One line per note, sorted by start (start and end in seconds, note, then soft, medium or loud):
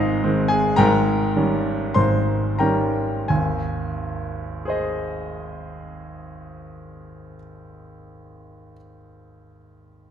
0.00 0.79 G#1 medium
0.00 0.78 G#2 medium
0.00 0.23 D#3 soft
0.00 0.24 G#3 soft
0.00 0.24 C4 medium
0.00 0.46 D#4 soft
0.00 0.81 F4 medium
0.00 0.50 G#4 medium
0.00 0.81 C5 medium
0.00 0.81 D#5 medium
0.00 0.81 F5 medium
0.00 0.48 G#5 loud
0.23 0.74 D#3 soft
0.23 0.74 G#3 soft
0.23 0.75 C4 medium
0.48 0.76 G#4 medium
0.48 0.77 G#5 medium
0.76 1.92 G#1 medium
0.76 1.92 G#2 medium
0.76 1.91 A#4 medium
0.76 1.91 G5 medium
0.76 1.94 A#5 medium
1.36 1.91 D#3 soft
1.36 1.92 G3 soft
1.36 1.92 C#4 soft
1.94 3.26 G#1 soft
1.94 3.26 G#2 soft
1.94 2.56 C5 medium
1.94 2.59 C6 medium
2.59 3.26 D#3 soft
2.59 3.26 G3 soft
2.59 3.26 C#4 soft
2.59 3.25 A#4 soft
2.59 3.25 G5 soft
2.59 3.29 A#5 medium
3.28 7.36 G#1 soft
3.28 7.37 D#2 soft
3.28 7.35 G#5 soft
4.65 8.72 G#4 soft
4.65 8.74 C5 soft
4.70 8.76 D#5 soft